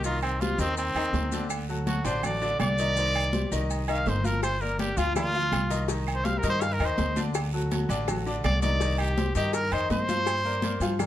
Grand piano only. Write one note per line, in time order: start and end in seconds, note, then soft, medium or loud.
0.05 0.35 D#3 medium
0.05 0.35 D#4 medium
0.05 0.35 D#5 medium
0.42 0.56 G3 medium
0.42 0.56 G4 medium
0.42 0.57 C5 medium
0.59 0.89 D#3 medium
0.59 0.90 D#4 medium
0.59 0.90 D#5 medium
0.96 1.26 D#3 medium
0.96 1.26 D#4 medium
0.96 1.26 D#5 medium
1.33 1.62 D3 medium
1.33 1.63 D4 medium
1.33 1.63 D5 medium
1.69 1.84 F#3 medium
1.69 1.84 F#4 medium
1.69 1.84 A4 medium
1.87 2.02 F#3 medium
1.87 2.02 F#4 medium
1.87 2.02 A4 medium
2.04 2.20 D3 loud
2.04 2.20 D4 loud
2.04 2.20 D5 medium
2.23 2.38 F#3 medium
2.23 2.38 F#4 medium
2.23 2.38 A4 medium
2.42 2.72 D3 medium
2.42 2.72 D4 medium
2.42 2.72 D5 medium
2.79 2.94 D#3 medium
2.79 2.94 D#4 medium
2.79 2.94 D#5 medium
2.98 3.27 D#3 medium
2.98 3.27 D#4 medium
2.98 3.27 C5 medium
3.33 3.48 G3 medium
3.33 3.48 G4 medium
3.33 3.48 C5 medium
3.52 3.82 D#3 medium
3.52 3.82 D#4 medium
3.52 3.82 D#5 medium
3.88 4.18 D#3 medium
3.88 4.18 D#4 medium
3.88 4.18 D#5 medium
4.24 4.54 F3 medium
4.24 4.54 F4 medium
4.24 4.54 F5 medium
4.61 4.76 A#3 medium
4.61 4.76 A#4 medium
4.61 4.76 D5 medium
4.78 4.94 A#3 medium
4.78 4.94 A#4 medium
4.78 4.94 D5 medium
4.97 5.12 F3 medium
4.97 5.12 F4 loud
4.97 5.13 F5 medium
5.16 5.31 A#3 medium
5.16 5.31 A#4 medium
5.16 5.31 D5 medium
5.34 5.64 F3 medium
5.34 5.64 F4 medium
5.34 5.64 F5 medium
5.70 5.85 D#3 medium
5.70 5.85 D#4 medium
5.70 5.85 D#5 medium
5.88 6.18 D#3 medium
5.88 6.19 D#4 medium
5.88 6.19 D#5 medium
6.25 6.40 G3 medium
6.25 6.40 G4 medium
6.25 6.40 C5 medium
6.43 6.73 D#3 loud
6.43 6.73 D#4 medium
6.43 6.73 D#5 loud
6.80 7.10 D#3 medium
6.80 7.10 D#4 medium
6.80 7.10 D#5 medium
7.17 7.46 D3 medium
7.17 7.47 D4 medium
7.17 7.47 D5 medium
7.53 7.68 F#3 medium
7.53 7.68 F#4 medium
7.53 7.68 A4 medium
7.71 7.86 F#3 medium
7.71 7.86 F#4 medium
7.71 7.87 A4 medium
7.89 8.04 D3 loud
7.89 8.04 D4 medium
7.89 8.05 D5 medium
8.08 8.23 F#3 medium
8.08 8.23 F#4 medium
8.08 8.23 A4 medium
8.26 8.56 D3 medium
8.26 8.56 D4 medium
8.26 8.56 D5 medium
8.63 8.78 D#3 medium
8.63 8.78 D#4 medium
8.63 8.78 D#5 medium
8.81 9.11 D#3 medium
8.81 9.11 D#4 medium
8.81 9.11 D#5 medium
9.17 9.32 G3 medium
9.17 9.33 G4 medium
9.17 9.33 C5 medium
9.36 9.65 D#3 medium
9.36 9.66 D#4 medium
9.36 9.66 D#5 loud
9.72 10.02 D#3 medium
9.72 10.02 D#4 medium
9.72 10.02 D#5 medium
10.08 10.38 F3 medium
10.08 10.38 F4 medium
10.08 10.39 F5 medium
10.45 10.60 A#3 medium
10.45 10.60 A#4 medium
10.45 10.60 D5 medium
10.63 10.78 A#3 medium
10.63 10.78 A#4 medium
10.63 10.78 D5 medium
10.81 10.96 F3 medium
10.81 10.96 F4 medium
10.81 10.97 F5 medium
10.99 11.06 A#3 medium
10.99 11.06 A#4 medium
10.99 11.06 D5 medium